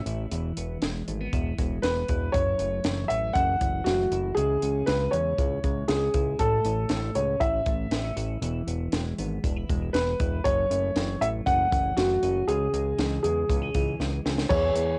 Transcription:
Already playing: clean electric guitar A2 A3 C#4
0.06 analog synth bass A1, clean electric guitar E4, closed hi-hat
0.31 analog synth bass E1, clean electric guitar E3 E4, closed hi-hat
0.57 analog synth bass E1, clean electric guitar B3, closed hi-hat
0.82 analog synth bass E1, clean electric guitar G#3, snare, closed hi-hat
1.07 analog synth bass G#1, clean electric guitar A3, closed hi-hat
1.21 clean electric guitar B3
1.33 analog synth bass E1, clean electric guitar E4, kick, closed hi-hat
1.58 analog synth bass E1, clean electric guitar G#3, kick, closed hi-hat
1.82 analog synth bass E1, clean electric guitar B3, upright piano B4, snare, closed hi-hat
2.08 analog synth bass E1, clean electric guitar E4, kick, closed hi-hat
2.32 analog synth bass F#1, clean electric guitar F#2 E4, upright piano C#5, kick, closed hi-hat
2.59 analog synth bass F#1, clean electric guitar A3, closed hi-hat
2.84 analog synth bass F#1, clean electric guitar E3, snare, closed hi-hat
3.08 analog synth bass A1, clean electric guitar A3, upright piano E5, closed hi-hat
3.33 analog synth bass F#1, clean electric guitar E4, upright piano F#5, kick, closed hi-hat
3.61 analog synth bass F#1, clean electric guitar E3, kick, closed hi-hat
3.84 analog synth bass F#1, clean electric guitar A3, upright piano F#4, snare, closed hi-hat
4.12 analog synth bass F#1, clean electric guitar E4, closed hi-hat
4.35 analog synth bass C#2, clean electric guitar C#3 E4, upright piano G#4, closed hi-hat
4.62 analog synth bass C#2, clean electric guitar C#4, closed hi-hat
4.86 analog synth bass C#2, clean electric guitar G#3, upright piano B4, snare, closed hi-hat
5.11 analog synth bass E2, clean electric guitar C#4, upright piano C#5, closed hi-hat
5.38 analog synth bass C#2, clean electric guitar E4, kick, closed hi-hat
5.64 analog synth bass C#2, clean electric guitar G#3, kick, closed hi-hat
5.88 analog synth bass C#2, clean electric guitar C#4, upright piano G#4, snare, closed hi-hat
6.14 analog synth bass C#2, clean electric guitar E4, kick, closed hi-hat
6.39 analog synth bass A1, clean electric guitar A2 E4, upright piano A4, kick, closed hi-hat
6.65 analog synth bass A1, clean electric guitar C#4, closed hi-hat
6.89 analog synth bass A1, clean electric guitar A3, snare, closed hi-hat
7.15 analog synth bass C#2, clean electric guitar C#4, upright piano C#5, closed hi-hat
7.40 analog synth bass A1, clean electric guitar E4, upright piano E5, kick, closed hi-hat
7.66 analog synth bass A1, clean electric guitar A3, kick, closed hi-hat
7.91 analog synth bass A1, clean electric guitar B3, snare, closed hi-hat
8.04 clean electric guitar C#4
8.17 analog synth bass A1, clean electric guitar E4, closed hi-hat
8.42 analog synth bass E1, clean electric guitar E3 E4, closed hi-hat
8.67 analog synth bass E1, clean electric guitar B3, closed hi-hat
8.92 analog synth bass E1, clean electric guitar G#3, snare, closed hi-hat
9.18 analog synth bass G#1, clean electric guitar B3, closed hi-hat
9.44 analog synth bass E1, clean electric guitar D4, kick, closed hi-hat
9.56 clean electric guitar E4
9.69 analog synth bass E1, clean electric guitar G#3, kick, closed hi-hat
9.93 analog synth bass E1, clean electric guitar B3, upright piano B4, snare, closed hi-hat
10.20 analog synth bass E1, clean electric guitar E4, kick, closed hi-hat
10.44 analog synth bass F#1, clean electric guitar F#2 C#4, upright piano C#5, kick, closed hi-hat
10.71 analog synth bass F#1, clean electric guitar A3, closed hi-hat
10.96 analog synth bass F#1, clean electric guitar E3, snare, closed hi-hat
11.21 analog synth bass A1, clean electric guitar A3, upright piano E5, closed hi-hat
11.46 analog synth bass F#1, clean electric guitar C#4, upright piano F#5, kick, closed hi-hat
11.71 analog synth bass F#1, clean electric guitar E3, kick, closed hi-hat
11.97 analog synth bass F#1, clean electric guitar A3, upright piano F#4, snare, closed hi-hat
12.23 analog synth bass F#1, clean electric guitar C#4, closed hi-hat
12.48 analog synth bass C#2, clean electric guitar C#3 C#4, upright piano G#4, closed hi-hat
12.73 analog synth bass C#2, clean electric guitar G#3, closed hi-hat
12.98 analog synth bass C#2, clean electric guitar E3, snare, closed hi-hat
13.23 analog synth bass E2, clean electric guitar G#3, upright piano G#4, closed hi-hat
13.49 analog synth bass C#2, clean electric guitar B3, kick, closed hi-hat
13.62 clean electric guitar C#4
13.74 analog synth bass C#2, clean electric guitar E3, kick, closed hi-hat
14.00 analog synth bass C#2, clean electric guitar G#3, snare
14.25 analog synth bass C#2, clean electric guitar C#4, snare
14.38 snare
14.49 analog synth bass E2, steel-string acoustic guitar E3 F#3 B3 E4 G#4, clean electric guitar E3, upright piano C#5, kick, crash
14.75 analog synth bass E2, steel-string acoustic guitar B3 E4 G#4, clean electric guitar E4, closed hi-hat

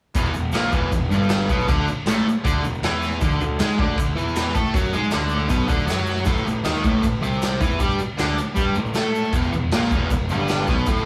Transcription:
0.14 picked electric bass E1, distorted electric guitar E2 E3, kick, crash, shaker
0.34 picked electric bass E1, distorted electric guitar E2, shaker
0.52 picked electric bass A#1, distorted electric guitar A#2 A#3, snare, crash, shaker
0.62 shaker
0.71 picked electric bass E1, distorted electric guitar E2 E3, kick, shaker
0.92 picked electric bass E1, distorted electric guitar E2, kick, crash, shaker
1.09 picked electric bass G1, distorted electric guitar G2 G3, shaker
1.22 shaker
1.29 snare, crash, shaker
1.49 picked electric bass B1, distorted electric guitar B2 B3, kick, shaker
1.60 shaker
1.68 picked electric bass D2, distorted electric guitar D3 D4, kick, crash, shaker
1.87 muted picked electric bass stroke, muted distorted electric guitar stroke, shaker
2.06 picked electric bass A1, distorted electric guitar A2 A3, snare, crash, shaker
2.25 muted picked electric bass stroke, muted distorted electric guitar stroke, shaker
2.44 picked electric bass D2, distorted electric guitar D3 D4, kick, crash, shaker
2.62 picked electric bass E1, distorted electric guitar E2, shaker
2.74 shaker
2.82 picked electric bass E2, distorted electric guitar E3 E4, snare, crash, shaker
3.02 snare, shaker
3.21 picked electric bass D2, distorted electric guitar D3 D4, kick, crash, shaker
3.41 picked electric bass D2, distorted electric guitar D3, shaker
3.59 picked electric bass G#2, distorted electric guitar G#3 G#4, snare, crash, shaker
3.71 shaker
3.78 picked electric bass D2, distorted electric guitar D3 D4, kick
3.97 picked electric bass D2, distorted electric guitar D3, kick, crash, shaker
4.16 picked electric bass E2, distorted electric guitar E3 E4, shaker
4.28 shaker
4.36 snare, crash, shaker
4.54 picked electric bass A2, distorted electric guitar A3 A4, kick, shaker
4.66 shaker
4.74 picked electric bass F#2, distorted electric guitar F#3 F#4, kick, crash, shaker
4.92 picked electric bass G#2, distorted electric guitar G#3 G#4, shaker
5.03 shaker
5.11 picked electric bass D2, distorted electric guitar D3 D4, snare, crash, shaker
5.21 shaker
5.29 shaker
5.39 shaker
5.49 picked electric bass B1, distorted electric guitar B2 B3, kick, crash, shaker
5.68 picked electric bass D2, distorted electric guitar D3 D4, kick, shaker
5.86 picked electric bass F#2, distorted electric guitar F#3 F#4, snare, crash, shaker
5.98 shaker
6.06 snare, shaker
6.17 shaker
6.25 picked electric bass A1, distorted electric guitar A2 A3, kick, crash, shaker
6.37 shaker
6.45 picked electric bass A1, distorted electric guitar A2, shaker
6.64 picked electric bass D#2, distorted electric guitar D#3 D#4, snare, crash, shaker
6.75 snare, shaker
6.84 picked electric bass A1, distorted electric guitar A2 A3, kick, shaker
7.03 picked electric bass A1, distorted electric guitar A2, kick, crash, shaker
7.22 picked electric bass C2, distorted electric guitar C3 C4, shaker
7.42 snare, crash, shaker
7.61 picked electric bass E2, distorted electric guitar E3 E4, kick, shaker
7.71 shaker
7.79 picked electric bass G2, distorted electric guitar G3 G4, kick, crash, shaker
7.91 shaker
7.99 muted distorted electric guitar stroke, muted picked electric bass stroke, shaker
8.18 picked electric bass D2, distorted electric guitar D3 D4, snare, crash, shaker
8.29 shaker
8.38 muted distorted electric guitar stroke, muted picked electric bass stroke, shaker
8.55 picked electric bass G2, distorted electric guitar G3 G4, kick, crash, shaker
8.75 picked electric bass A1, distorted electric guitar A2, shaker
8.86 shaker
8.94 picked electric bass A2, distorted electric guitar A3 A4, snare, crash, shaker
9.15 shaker
9.24 shaker
9.32 picked electric bass E1, distorted electric guitar E2 E3, kick, crash, shaker
9.53 picked electric bass E1, distorted electric guitar E2, shaker
9.71 picked electric bass A#1, distorted electric guitar A#2 A#3, snare, crash, shaker
9.91 picked electric bass E1, distorted electric guitar E2 E3, kick, shaker
10.10 picked electric bass E1, distorted electric guitar E2, kick, crash, shaker
10.29 picked electric bass G1, distorted electric guitar G2 G3, shaker
10.39 shaker
10.48 snare, crash, shaker
10.67 picked electric bass B1, distorted electric guitar B2 B3, kick, snare, shaker
10.78 shaker
10.86 picked electric bass A1, distorted electric guitar A2 A3, kick, crash, shaker

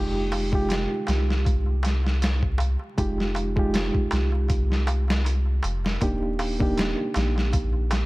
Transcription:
Already playing: sub bass F1, reed electric piano G#3 D#4 F4 G4
0.14 darbuka tek
0.32 open hi-hat, darbuka tek
0.52 reed electric piano G#3 D#4 F4 G4, kick, darbuka tek
0.69 snare, closed hi-hat, darbuka tek
0.90 darbuka tek
1.07 sub bass C2, snare, closed hi-hat, darbuka tek
1.29 snare, darbuka tek
1.45 kick, closed hi-hat, darbuka tek
1.66 darbuka tek
1.83 snare, closed hi-hat, darbuka tek
2.04 snare, darbuka tek
2.22 snare, closed hi-hat, darbuka tek
2.42 kick, darbuka tek
2.58 closed hi-hat, darbuka tek
2.79 darbuka tek
2.98 sub bass F1, reed electric piano G#3 D#4 F4 G4, kick, closed hi-hat, darbuka tek
3.18 snare, darbuka tek
3.35 closed hi-hat, darbuka tek
3.56 reed electric piano G#3 D#4 F4 G4, kick, darbuka tek
3.74 snare, closed hi-hat, darbuka tek
3.93 kick, darbuka tek
4.11 sub bass C2, snare, closed hi-hat, darbuka tek
4.32 darbuka tek
4.48 kick, closed hi-hat, darbuka tek
4.70 snare, darbuka tek
4.87 closed hi-hat, darbuka tek
5.08 snare, darbuka tek
5.25 closed hi-hat, darbuka tek
5.45 darbuka tek
5.63 sub bass F1, closed hi-hat, darbuka tek
5.85 snare, darbuka tek
6.01 sub bass D#1, reed electric piano A#3 D4 D#4 G4, kick, closed hi-hat, darbuka tek
6.23 darbuka tek
6.39 open hi-hat, darbuka tek
6.59 reed electric piano A#3 D4 D#4 G4, kick, darbuka tek
6.77 snare, closed hi-hat, darbuka tek
6.97 darbuka tek
7.14 sub bass A#1, snare, closed hi-hat, darbuka tek
7.36 snare, darbuka tek
7.53 kick, closed hi-hat, darbuka tek
7.73 darbuka tek
7.91 snare, closed hi-hat, darbuka tek

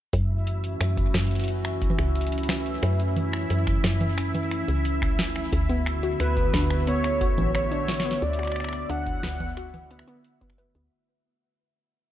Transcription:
0.13 fm bass F#2, ambient pad E3 A3 C#4 F#4, synth texture E4 E5, kick, closed hi-hat
0.47 closed hi-hat
0.64 closed hi-hat
0.81 fm bass F#2, finger snap, closed hi-hat
0.97 kick, closed hi-hat
1.14 fm bass F#2, finger snap, kick, snare, closed hi-hat
1.19 closed hi-hat
1.23 closed hi-hat
1.27 closed hi-hat
1.31 closed hi-hat
1.35 closed hi-hat
1.40 closed hi-hat
1.44 closed hi-hat
1.48 closed hi-hat
1.65 finger snap, closed hi-hat
1.82 kick, closed hi-hat
1.90 low conga
1.99 fm bass C#2, finger snap, closed hi-hat
2.15 closed hi-hat
2.21 closed hi-hat
2.27 closed hi-hat
2.32 closed hi-hat
2.38 closed hi-hat
2.43 closed hi-hat
2.49 finger snap, snare, closed hi-hat, low conga
2.66 closed hi-hat
2.83 fm bass F#2, ambient pad E4, finger snap, closed hi-hat
3.00 closed hi-hat
3.17 closed hi-hat, low conga
3.33 finger snap
3.50 fm bass F#2, closed hi-hat
3.67 finger snap, kick, closed hi-hat
3.84 fm bass F#2, snare, closed hi-hat
4.01 closed hi-hat, low conga
4.18 finger snap, closed hi-hat
4.35 closed hi-hat, low conga
4.51 finger snap, closed hi-hat
4.68 fm bass C#2, closed hi-hat
4.85 closed hi-hat
5.02 finger snap, kick, closed hi-hat
5.19 snare, closed hi-hat
5.36 finger snap, closed hi-hat
5.53 fm bass D2, ambient pad D3 A3 B3 F#4, kick, closed hi-hat
5.69 synth pluck B3, closed hi-hat
5.86 finger snap, closed hi-hat
6.03 synth pluck F#4, closed hi-hat
6.20 fm bass D2, soft synth lead B4, finger snap, closed hi-hat
6.37 kick, closed hi-hat
6.54 fm bass D2, synth pluck D4, kick, snare, closed hi-hat
6.71 finger snap, closed hi-hat
6.87 synth pluck B3, soft synth lead C#5, closed hi-hat
7.04 finger snap, closed hi-hat
7.21 synth pluck F#4, kick, closed hi-hat
7.38 fm bass A1, closed hi-hat, low conga
7.42 low conga
7.46 low conga
7.51 low conga
7.55 soft synth lead C#5, finger snap, closed hi-hat, low conga
7.59 low conga
7.63 low conga
7.67 low conga
7.72 synth pluck D4, closed hi-hat
7.89 snare, closed hi-hat, low conga
7.94 closed hi-hat
8.00 snare, closed hi-hat
8.05 synth pluck B3, closed hi-hat
8.11 snare
8.22 fm bass D2, soft synth lead D5, closed hi-hat
8.33 closed hi-hat
8.39 synth pluck F#4, finger snap, closed hi-hat
8.43 finger snap, closed hi-hat
8.47 finger snap, closed hi-hat
8.52 finger snap
8.56 finger snap, closed hi-hat
8.60 finger snap, closed hi-hat
8.64 finger snap
8.69 finger snap
8.73 finger snap, closed hi-hat
8.90 fm bass D2, synth pluck D4, soft synth lead F#5, closed hi-hat
9.06 kick, closed hi-hat
9.23 fm bass D2, synth pluck B3, finger snap, snare, closed hi-hat
9.40 kick, closed hi-hat, low conga
9.57 synth pluck F#4, finger snap, closed hi-hat
9.74 closed hi-hat, low conga
9.91 synth pluck B3, closed hi-hat
9.99 finger snap
10.08 synth pluck B3, closed hi-hat
10.24 closed hi-hat
10.41 synth pluck B3, kick, closed hi-hat
10.50 finger snap
10.58 synth pluck B4, closed hi-hat
10.75 fm bass D2, synth pluck B3, closed hi-hat

